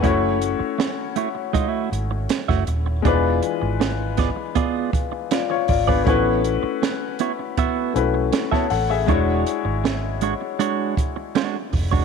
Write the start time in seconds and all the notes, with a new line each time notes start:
Already playing: F#5
0.01 F#1 A3 C#4 E4 F#4 C#5, kick, closed hi-hat
0.07 C#5
0.42 closed hi-hat
0.59 muted clean electric guitar stroke, muted fingered electric bass stroke
0.78 muted clean electric guitar stroke, snare, closed hi-hat
1.16 A3 E4 F#4 C#5, closed hi-hat
1.35 muted clean electric guitar stroke
1.53 G#3 D#4 F4 D#5, kick, closed hi-hat
1.68 A3 E4 F#4 E5
1.92 G#1, muted clean electric guitar stroke, closed hi-hat
2.11 muted clean electric guitar stroke
2.29 muted clean electric guitar stroke, snare, closed hi-hat
2.48 F#1 A3 E4 F#4 E5, kick, snare
2.67 D#1, muted clean electric guitar stroke, closed hi-hat
2.86 muted clean electric guitar stroke
3.02 E1 E3 G#3 B3 D4 F4 G#4, kick, closed hi-hat
3.06 F4 B4 D5
3.43 closed hi-hat
3.62 G#1, muted clean electric guitar stroke
3.80 muted clean electric guitar stroke, snare, closed hi-hat
4.17 B3 F4 G#4 D5, kick, snare, closed hi-hat
4.36 muted clean electric guitar stroke
4.55 B3 F4 G#4 D5, kick, closed hi-hat
4.93 muted clean electric guitar stroke, kick, closed hi-hat
5.12 muted clean electric guitar stroke
5.31 F4 D5, muted clean electric guitar stroke, snare, closed hi-hat
5.50 F4 C#5, muted clean electric guitar stroke
5.68 G#1 F4 D5, kick, open hi-hat
5.87 B3 D4 F4 G#4 B4 D5, kick
6.04 A1 A3 B3 C#4 E4 F#4 C#5, kick, closed hi-hat
6.09 B4
6.44 closed hi-hat
6.63 muted clean electric guitar stroke, muted fingered electric bass stroke
6.82 muted clean electric guitar stroke, snare, closed hi-hat
7.19 B3 E4 F#4 C#5, closed hi-hat
7.39 muted clean electric guitar stroke
7.57 B3 E4 F#4 E5, kick, closed hi-hat
7.94 B1 A3 C#4 E4 F#4 B4, muted clean electric guitar stroke, closed hi-hat
8.14 muted clean electric guitar stroke
8.32 muted clean electric guitar stroke, snare, closed hi-hat
8.51 B3 E4 F#4 C#5 E5 A5, kick, snare
8.70 A1 A4 F#5, muted clean electric guitar stroke, open hi-hat
8.90 G#4 E5, muted clean electric guitar stroke
9.06 E1 G#3 D4 E4 F#4 C#5, kick, closed hi-hat
9.11 C#5
9.47 closed hi-hat
9.65 G#1, muted clean electric guitar stroke
9.84 muted clean electric guitar stroke, snare, closed hi-hat
10.21 G#3 D4 F#4 C#5, closed hi-hat
10.41 muted clean electric guitar stroke
10.59 G#3 D4 F#4 C#5, closed hi-hat
10.97 muted clean electric guitar stroke, kick, closed hi-hat
11.16 muted clean electric guitar stroke
11.35 G#3 D4 F#4 C#5, snare, closed hi-hat
11.73 F1, muted clean electric guitar stroke, kick, open hi-hat
11.91 G#3 D4 F#4 C#5, kick